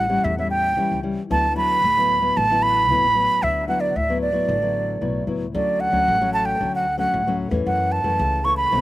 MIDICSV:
0, 0, Header, 1, 4, 480
1, 0, Start_track
1, 0, Key_signature, 2, "major"
1, 0, Tempo, 529568
1, 1183, Time_signature, 4, 2, 24, 8
1, 7985, End_track
2, 0, Start_track
2, 0, Title_t, "Flute"
2, 0, Program_c, 0, 73
2, 0, Note_on_c, 0, 78, 97
2, 219, Note_on_c, 0, 76, 82
2, 233, Note_off_c, 0, 78, 0
2, 341, Note_off_c, 0, 76, 0
2, 351, Note_on_c, 0, 76, 82
2, 452, Note_off_c, 0, 76, 0
2, 457, Note_on_c, 0, 79, 95
2, 907, Note_off_c, 0, 79, 0
2, 1191, Note_on_c, 0, 81, 96
2, 1411, Note_off_c, 0, 81, 0
2, 1423, Note_on_c, 0, 83, 107
2, 2147, Note_on_c, 0, 81, 97
2, 2161, Note_off_c, 0, 83, 0
2, 2379, Note_on_c, 0, 83, 104
2, 2393, Note_off_c, 0, 81, 0
2, 3107, Note_on_c, 0, 76, 84
2, 3120, Note_off_c, 0, 83, 0
2, 3332, Note_off_c, 0, 76, 0
2, 3337, Note_on_c, 0, 78, 78
2, 3448, Note_on_c, 0, 74, 72
2, 3461, Note_off_c, 0, 78, 0
2, 3591, Note_on_c, 0, 76, 82
2, 3605, Note_off_c, 0, 74, 0
2, 3815, Note_off_c, 0, 76, 0
2, 3821, Note_on_c, 0, 74, 75
2, 4747, Note_off_c, 0, 74, 0
2, 5029, Note_on_c, 0, 74, 81
2, 5259, Note_on_c, 0, 78, 99
2, 5273, Note_off_c, 0, 74, 0
2, 5736, Note_off_c, 0, 78, 0
2, 5741, Note_on_c, 0, 81, 88
2, 5851, Note_on_c, 0, 79, 83
2, 5864, Note_off_c, 0, 81, 0
2, 6098, Note_off_c, 0, 79, 0
2, 6119, Note_on_c, 0, 78, 83
2, 6330, Note_off_c, 0, 78, 0
2, 6335, Note_on_c, 0, 78, 82
2, 6675, Note_off_c, 0, 78, 0
2, 6949, Note_on_c, 0, 78, 84
2, 7178, Note_on_c, 0, 81, 98
2, 7191, Note_off_c, 0, 78, 0
2, 7656, Note_on_c, 0, 85, 94
2, 7669, Note_off_c, 0, 81, 0
2, 7761, Note_off_c, 0, 85, 0
2, 7767, Note_on_c, 0, 83, 94
2, 7985, Note_off_c, 0, 83, 0
2, 7985, End_track
3, 0, Start_track
3, 0, Title_t, "Nylon-string guitar"
3, 0, Program_c, 1, 24
3, 0, Note_on_c, 1, 52, 48
3, 80, Note_on_c, 1, 55, 58
3, 87, Note_on_c, 1, 64, 71
3, 88, Note_on_c, 1, 61, 60
3, 197, Note_off_c, 1, 52, 0
3, 219, Note_on_c, 1, 45, 57
3, 293, Note_off_c, 1, 55, 0
3, 295, Note_off_c, 1, 61, 0
3, 296, Note_off_c, 1, 64, 0
3, 347, Note_on_c, 1, 55, 54
3, 351, Note_on_c, 1, 61, 55
3, 354, Note_on_c, 1, 64, 59
3, 666, Note_off_c, 1, 55, 0
3, 668, Note_off_c, 1, 61, 0
3, 670, Note_off_c, 1, 64, 0
3, 677, Note_off_c, 1, 45, 0
3, 697, Note_on_c, 1, 52, 50
3, 697, Note_on_c, 1, 55, 52
3, 701, Note_on_c, 1, 61, 47
3, 706, Note_on_c, 1, 64, 55
3, 902, Note_off_c, 1, 55, 0
3, 904, Note_off_c, 1, 61, 0
3, 906, Note_off_c, 1, 64, 0
3, 934, Note_on_c, 1, 55, 48
3, 937, Note_on_c, 1, 61, 53
3, 938, Note_on_c, 1, 64, 50
3, 1093, Note_off_c, 1, 55, 0
3, 1094, Note_off_c, 1, 61, 0
3, 1095, Note_off_c, 1, 64, 0
3, 1157, Note_off_c, 1, 52, 0
3, 1180, Note_on_c, 1, 50, 55
3, 1181, Note_on_c, 1, 54, 57
3, 1186, Note_on_c, 1, 59, 58
3, 1188, Note_on_c, 1, 64, 65
3, 1323, Note_off_c, 1, 54, 0
3, 1325, Note_off_c, 1, 59, 0
3, 1327, Note_off_c, 1, 64, 0
3, 1409, Note_on_c, 1, 54, 58
3, 1413, Note_on_c, 1, 59, 54
3, 1418, Note_on_c, 1, 64, 59
3, 1639, Note_off_c, 1, 50, 0
3, 1642, Note_off_c, 1, 54, 0
3, 1644, Note_off_c, 1, 59, 0
3, 1645, Note_off_c, 1, 64, 0
3, 1661, Note_on_c, 1, 45, 48
3, 1788, Note_on_c, 1, 54, 60
3, 1795, Note_on_c, 1, 59, 59
3, 1797, Note_on_c, 1, 64, 59
3, 1989, Note_off_c, 1, 54, 0
3, 1990, Note_off_c, 1, 59, 0
3, 1992, Note_off_c, 1, 64, 0
3, 2005, Note_on_c, 1, 54, 60
3, 2012, Note_on_c, 1, 59, 57
3, 2012, Note_on_c, 1, 64, 65
3, 2119, Note_off_c, 1, 45, 0
3, 2144, Note_on_c, 1, 50, 58
3, 2217, Note_off_c, 1, 54, 0
3, 2219, Note_off_c, 1, 59, 0
3, 2220, Note_off_c, 1, 64, 0
3, 2270, Note_on_c, 1, 54, 53
3, 2274, Note_on_c, 1, 59, 55
3, 2281, Note_on_c, 1, 64, 66
3, 2589, Note_off_c, 1, 54, 0
3, 2592, Note_off_c, 1, 59, 0
3, 2594, Note_off_c, 1, 64, 0
3, 2601, Note_off_c, 1, 50, 0
3, 2626, Note_on_c, 1, 45, 54
3, 2626, Note_on_c, 1, 54, 51
3, 2631, Note_on_c, 1, 59, 52
3, 2635, Note_on_c, 1, 64, 60
3, 2766, Note_off_c, 1, 54, 0
3, 2770, Note_off_c, 1, 59, 0
3, 2770, Note_off_c, 1, 64, 0
3, 2852, Note_on_c, 1, 54, 53
3, 2858, Note_on_c, 1, 64, 53
3, 2859, Note_on_c, 1, 59, 48
3, 3082, Note_off_c, 1, 45, 0
3, 3104, Note_on_c, 1, 50, 55
3, 3301, Note_off_c, 1, 54, 0
3, 3303, Note_off_c, 1, 59, 0
3, 3304, Note_off_c, 1, 64, 0
3, 3332, Note_on_c, 1, 54, 52
3, 3336, Note_on_c, 1, 59, 58
3, 3341, Note_on_c, 1, 64, 60
3, 3561, Note_off_c, 1, 50, 0
3, 3564, Note_off_c, 1, 54, 0
3, 3566, Note_off_c, 1, 59, 0
3, 3569, Note_off_c, 1, 64, 0
3, 3582, Note_on_c, 1, 45, 50
3, 3708, Note_on_c, 1, 54, 59
3, 3713, Note_on_c, 1, 59, 61
3, 3718, Note_on_c, 1, 64, 68
3, 3909, Note_off_c, 1, 54, 0
3, 3910, Note_off_c, 1, 59, 0
3, 3913, Note_off_c, 1, 64, 0
3, 3917, Note_on_c, 1, 54, 59
3, 3924, Note_on_c, 1, 59, 57
3, 3927, Note_on_c, 1, 64, 64
3, 4040, Note_off_c, 1, 45, 0
3, 4065, Note_on_c, 1, 50, 54
3, 4134, Note_off_c, 1, 54, 0
3, 4135, Note_off_c, 1, 59, 0
3, 4138, Note_off_c, 1, 64, 0
3, 4188, Note_on_c, 1, 54, 59
3, 4192, Note_on_c, 1, 59, 54
3, 4197, Note_on_c, 1, 64, 60
3, 4509, Note_off_c, 1, 54, 0
3, 4511, Note_off_c, 1, 59, 0
3, 4512, Note_off_c, 1, 64, 0
3, 4522, Note_off_c, 1, 50, 0
3, 4542, Note_on_c, 1, 45, 55
3, 4544, Note_on_c, 1, 54, 50
3, 4548, Note_on_c, 1, 59, 49
3, 4550, Note_on_c, 1, 64, 56
3, 4746, Note_off_c, 1, 54, 0
3, 4749, Note_off_c, 1, 59, 0
3, 4749, Note_off_c, 1, 64, 0
3, 4777, Note_on_c, 1, 54, 45
3, 4782, Note_on_c, 1, 59, 48
3, 4785, Note_on_c, 1, 64, 54
3, 4937, Note_off_c, 1, 54, 0
3, 4938, Note_off_c, 1, 59, 0
3, 4940, Note_off_c, 1, 64, 0
3, 5000, Note_off_c, 1, 45, 0
3, 5029, Note_on_c, 1, 50, 60
3, 5031, Note_on_c, 1, 54, 57
3, 5031, Note_on_c, 1, 57, 64
3, 5035, Note_on_c, 1, 61, 68
3, 5349, Note_off_c, 1, 54, 0
3, 5351, Note_off_c, 1, 57, 0
3, 5351, Note_off_c, 1, 61, 0
3, 5369, Note_on_c, 1, 54, 61
3, 5374, Note_on_c, 1, 57, 60
3, 5375, Note_on_c, 1, 61, 65
3, 5484, Note_off_c, 1, 50, 0
3, 5509, Note_on_c, 1, 45, 57
3, 5580, Note_off_c, 1, 54, 0
3, 5581, Note_off_c, 1, 57, 0
3, 5582, Note_off_c, 1, 61, 0
3, 5630, Note_on_c, 1, 54, 63
3, 5633, Note_on_c, 1, 57, 69
3, 5639, Note_on_c, 1, 61, 69
3, 5950, Note_off_c, 1, 54, 0
3, 5952, Note_off_c, 1, 57, 0
3, 5953, Note_off_c, 1, 61, 0
3, 5963, Note_off_c, 1, 45, 0
3, 5982, Note_on_c, 1, 50, 57
3, 5986, Note_on_c, 1, 54, 54
3, 5990, Note_on_c, 1, 61, 59
3, 5992, Note_on_c, 1, 57, 58
3, 6210, Note_off_c, 1, 54, 0
3, 6211, Note_off_c, 1, 57, 0
3, 6213, Note_off_c, 1, 61, 0
3, 6323, Note_on_c, 1, 54, 64
3, 6328, Note_on_c, 1, 57, 61
3, 6332, Note_on_c, 1, 61, 72
3, 6441, Note_off_c, 1, 50, 0
3, 6465, Note_on_c, 1, 45, 58
3, 6536, Note_off_c, 1, 54, 0
3, 6538, Note_off_c, 1, 57, 0
3, 6541, Note_off_c, 1, 61, 0
3, 6591, Note_on_c, 1, 54, 67
3, 6598, Note_on_c, 1, 57, 57
3, 6599, Note_on_c, 1, 61, 72
3, 6790, Note_off_c, 1, 54, 0
3, 6792, Note_off_c, 1, 57, 0
3, 6794, Note_off_c, 1, 61, 0
3, 6806, Note_on_c, 1, 52, 65
3, 6811, Note_on_c, 1, 57, 68
3, 6815, Note_on_c, 1, 61, 70
3, 6921, Note_off_c, 1, 45, 0
3, 6947, Note_on_c, 1, 42, 57
3, 7257, Note_off_c, 1, 52, 0
3, 7260, Note_off_c, 1, 57, 0
3, 7262, Note_off_c, 1, 61, 0
3, 7284, Note_on_c, 1, 52, 61
3, 7289, Note_on_c, 1, 57, 62
3, 7289, Note_on_c, 1, 61, 69
3, 7402, Note_off_c, 1, 42, 0
3, 7424, Note_on_c, 1, 49, 55
3, 7616, Note_off_c, 1, 52, 0
3, 7617, Note_off_c, 1, 57, 0
3, 7619, Note_off_c, 1, 61, 0
3, 7652, Note_on_c, 1, 52, 56
3, 7659, Note_on_c, 1, 57, 54
3, 7661, Note_on_c, 1, 61, 66
3, 7860, Note_off_c, 1, 52, 0
3, 7862, Note_off_c, 1, 57, 0
3, 7864, Note_off_c, 1, 61, 0
3, 7880, Note_off_c, 1, 49, 0
3, 7904, Note_on_c, 1, 47, 56
3, 7904, Note_on_c, 1, 51, 58
3, 7907, Note_on_c, 1, 57, 64
3, 7911, Note_on_c, 1, 60, 66
3, 7985, Note_off_c, 1, 47, 0
3, 7985, Note_off_c, 1, 51, 0
3, 7985, Note_off_c, 1, 57, 0
3, 7985, Note_off_c, 1, 60, 0
3, 7985, End_track
4, 0, Start_track
4, 0, Title_t, "Upright bass"
4, 0, Program_c, 2, 32
4, 0, Note_on_c, 2, 33, 84
4, 150, Note_off_c, 2, 33, 0
4, 221, Note_on_c, 2, 40, 96
4, 702, Note_off_c, 2, 40, 0
4, 702, Note_on_c, 2, 33, 84
4, 805, Note_off_c, 2, 33, 0
4, 830, Note_on_c, 2, 37, 74
4, 1031, Note_off_c, 2, 37, 0
4, 1185, Note_on_c, 2, 38, 94
4, 1593, Note_off_c, 2, 38, 0
4, 1668, Note_on_c, 2, 38, 87
4, 2075, Note_off_c, 2, 38, 0
4, 2149, Note_on_c, 2, 33, 94
4, 2630, Note_off_c, 2, 33, 0
4, 2630, Note_on_c, 2, 38, 82
4, 2730, Note_off_c, 2, 38, 0
4, 2757, Note_on_c, 2, 33, 71
4, 2956, Note_off_c, 2, 33, 0
4, 3107, Note_on_c, 2, 38, 89
4, 3515, Note_off_c, 2, 38, 0
4, 3589, Note_on_c, 2, 38, 86
4, 3996, Note_off_c, 2, 38, 0
4, 4065, Note_on_c, 2, 33, 89
4, 4542, Note_off_c, 2, 33, 0
4, 4547, Note_on_c, 2, 35, 71
4, 4763, Note_off_c, 2, 35, 0
4, 4778, Note_on_c, 2, 37, 67
4, 4998, Note_off_c, 2, 37, 0
4, 5026, Note_on_c, 2, 38, 92
4, 5332, Note_off_c, 2, 38, 0
4, 5370, Note_on_c, 2, 38, 80
4, 5479, Note_off_c, 2, 38, 0
4, 5511, Note_on_c, 2, 33, 89
4, 5917, Note_off_c, 2, 33, 0
4, 5988, Note_on_c, 2, 38, 81
4, 6395, Note_off_c, 2, 38, 0
4, 6468, Note_on_c, 2, 38, 87
4, 6773, Note_off_c, 2, 38, 0
4, 6810, Note_on_c, 2, 40, 89
4, 6918, Note_off_c, 2, 40, 0
4, 6948, Note_on_c, 2, 42, 90
4, 7253, Note_off_c, 2, 42, 0
4, 7288, Note_on_c, 2, 42, 77
4, 7397, Note_off_c, 2, 42, 0
4, 7428, Note_on_c, 2, 37, 95
4, 7835, Note_off_c, 2, 37, 0
4, 7906, Note_on_c, 2, 35, 84
4, 7985, Note_off_c, 2, 35, 0
4, 7985, End_track
0, 0, End_of_file